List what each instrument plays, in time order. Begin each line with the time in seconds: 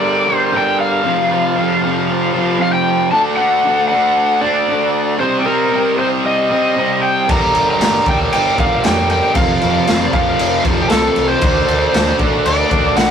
Already playing: distorted electric guitar D3 G3, transistor combo organ D4 G4 A#4, electric slide guitar D5
0.27 distorted electric guitar D3 G3
0.36 electric slide guitar C5
0.53 distorted electric guitar G2 D3 G3
0.57 electric slide guitar G5
0.80 electric slide guitar F5
1.04 distorted electric guitar F2 C3 F3, transistor combo organ F4 A4
1.08 transistor combo organ C5
1.30 distorted electric guitar C3 F3
1.56 distorted electric guitar F2 C3
1.60 distorted electric guitar F3
1.82 distorted electric guitar C3 F3
2.33 distorted electric guitar F3
2.37 distorted electric guitar C3
2.58 distorted electric guitar F2 C3 F3, electric slide guitar F5
2.73 electric slide guitar G5
3.11 distorted electric guitar D3 A3, transistor combo organ F#4 A4 D5, electric slide guitar A5
3.16 distorted electric guitar D4
3.37 distorted electric guitar D4, electric slide guitar F#5
3.41 distorted electric guitar A3
3.65 distorted electric guitar D3 A3 D4
3.88 distorted electric guitar D4, electric slide guitar F#5
3.94 distorted electric guitar A3
4.41 distorted electric guitar A3 D4, electric slide guitar D5
4.68 distorted electric guitar D3 A3 D4
5.19 distorted electric guitar C3 G3, transistor combo organ G4 C5, electric slide guitar C5
5.23 distorted electric guitar C4, transistor combo organ D#5
5.39 electric slide guitar G4
5.45 distorted electric guitar C4, electric slide guitar A#4
5.50 distorted electric guitar G3
5.72 distorted electric guitar C3 G3
5.76 distorted electric guitar C4
5.97 distorted electric guitar C4, electric slide guitar C5
6.01 distorted electric guitar G3
6.26 electric slide guitar D#5
6.50 distorted electric guitar G3 C4
6.76 distorted electric guitar C3 G3 C4
7.03 electric slide guitar G5
7.25 distorted electric guitar G2, transistor combo organ G4 A#4 D5, kick, crash
7.30 fingered electric bass G1, distorted electric guitar D3 G3, electric slide guitar A#5
7.54 fingered electric bass G1, distorted electric guitar D3 G3, crash
7.71 electric slide guitar A#5
7.79 fingered electric bass G1, distorted electric guitar G2 D3, snare, crash
7.84 distorted electric guitar G3
8.05 fingered electric bass D2, distorted electric guitar D3 G3, electric slide guitar G5, kick, crash
8.32 fingered electric bass G1, electric slide guitar G5, crash
8.56 fingered electric bass G1, distorted electric guitar D3 G3, electric slide guitar F5, kick, crash
8.81 distorted electric guitar G2 D3, snare, crash
8.85 fingered electric bass F2, distorted electric guitar G3, electric slide guitar G5
9.09 electric slide guitar G5, crash
9.33 fingered electric bass F1, distorted electric guitar F2 C3 F3, transistor combo organ F4 A4, electric slide guitar F5, kick, crash
9.37 transistor combo organ C5
9.61 fingered electric bass F1, distorted electric guitar C3 F3, crash
9.87 fingered electric bass F1, distorted electric guitar F2 C3 F3, snare, crash
10.07 electric slide guitar D5
10.12 fingered electric bass F1, distorted electric guitar F3, electric slide guitar F5, kick, crash
10.16 distorted electric guitar C3
10.39 fingered electric bass F1, crash
10.64 fingered electric bass F1, distorted electric guitar C3 F3, kick, crash
10.83 electric slide guitar G4
10.90 fingered electric bass C2, distorted electric guitar F2 C3 F3, electric slide guitar A4, snare, crash
11.16 fingered electric bass C2, crash
11.28 electric slide guitar C5
11.40 fingered electric bass D2, distorted electric guitar D3 A3, transistor combo organ F#4 A4 D5, kick, crash
11.44 distorted electric guitar D4
11.66 fingered electric bass D2, distorted electric guitar A3 D4, crash
11.92 fingered electric bass D2, distorted electric guitar D3 A3 D4, snare, crash
12.19 fingered electric bass A1, distorted electric guitar A3 D4, kick, crash
12.45 fingered electric bass D2, electric slide guitar D5, crash
12.69 fingered electric bass D2, distorted electric guitar D4, kick, crash
12.74 distorted electric guitar A3
12.96 fingered electric bass B1, distorted electric guitar D3 A3 D4, electric slide guitar F#5, snare, crash